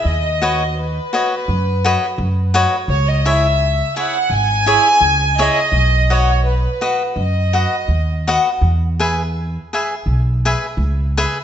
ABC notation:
X:1
M:4/4
L:1/16
Q:"Swing" 1/4=84
K:Bmix
V:1 name="Violin section"
d4 B8- B2 z2 | c d e4 f2 g6 d2- | d2 c2 B4 d6 z2 | z16 |]
V:2 name="Cavaquinho"
z2 [FBcd]2 z2 [FBcd]2 z2 [FBcd]2 z2 [FBcd]2 | z2 [EGce]2 z2 [EGce]2 z2 [EGce]2 z2 [EGce]2 | z2 [FBdf]2 z2 [FBdf]2 z2 [FBdf]2 z2 [FBdf]2 | z2 [GBeg]2 z2 [GBeg]2 z2 [GBeg]2 z2 [GBeg]2 |]
V:3 name="Upright bass" clef=bass
D,,8 F,,4 F,,4 | C,,8 G,,,4 C,,4 | B,,,8 F,,4 D,,4 | E,,8 B,,,4 C,,4 |]